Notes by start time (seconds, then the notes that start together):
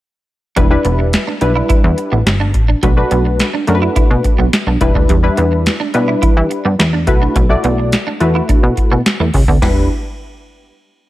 0.56 E1 G3 D4 E4 B4, kick, closed hi-hat
0.70 G3 D4 E4 B4
0.85 E1 B3, closed hi-hat
0.99 muted clean electric guitar stroke
1.13 snare, clap, closed hi-hat
1.27 D4
1.41 B1 G3 D4 E4 B4, muted clean electric guitar stroke, closed hi-hat
1.55 E4
1.69 E2 E4, kick, closed hi-hat
1.84 E2
1.98 muted clean electric guitar stroke, closed hi-hat
2.12 A1 B3
2.26 G1, snare, clap, closed hi-hat
2.40 D4
2.54 A1, muted clean electric guitar stroke, kick, closed hi-hat
2.68 D4
2.83 B1 F#3 A3 D4 F#4 B4, kick, closed hi-hat
2.97 A3 D4 F#4 B4
3.11 B1 B3, closed hi-hat
3.25 muted clean electric guitar stroke
3.40 snare, clap, closed hi-hat
3.54 D4
3.67 F#2 A3 D4 F#4 A#4, muted clean electric guitar stroke, closed hi-hat
3.75 B4
3.82 E4
3.96 B2 E4, kick, closed hi-hat
4.10 B2
4.24 muted clean electric guitar stroke, kick, closed hi-hat
4.39 B1 B3
4.53 snare, clap, closed hi-hat
4.67 B1 D4
4.81 E1 G3 D4 E4 B4, muted clean electric guitar stroke, kick, closed hi-hat
4.95 D2 D4, kick
5.09 E2 G3, kick, closed hi-hat
5.23 G3 D4 E4 B4
5.37 E2 B3, closed hi-hat
5.52 muted clean electric guitar stroke
5.66 snare, clap, closed hi-hat
5.80 D4
5.94 B2 G3 D4 E4 B4, muted clean electric guitar stroke, closed hi-hat
6.08 E4
6.22 E3 E4, kick, closed hi-hat
6.37 E3
6.51 muted clean electric guitar stroke, closed hi-hat
6.65 G2 B3
6.79 E2, snare, clap, closed hi-hat
6.93 D4
7.07 B1 A3 E4 F#4 B4, muted clean electric guitar stroke, kick, closed hi-hat
7.22 D4
7.36 B1 A3, kick, closed hi-hat
7.49 A3 E4 F#4 D5
7.64 B1 B3, closed hi-hat
7.78 muted clean electric guitar stroke
7.92 snare, clap, closed hi-hat
8.07 D4
8.20 E2 A3 E4 F#4 B4, muted clean electric guitar stroke, closed hi-hat
8.35 E4
8.49 B2 D4, kick, closed hi-hat
8.63 B2
8.77 muted clean electric guitar stroke, kick, closed hi-hat
8.91 B2 B3
9.06 snare, clap, closed hi-hat
9.20 E2 A3
9.34 C#2, muted clean electric guitar stroke, kick, open hi-hat
9.48 D2 B3, kick
9.62 E1 G3 B3 D4 E4 B4, kick, snare, crash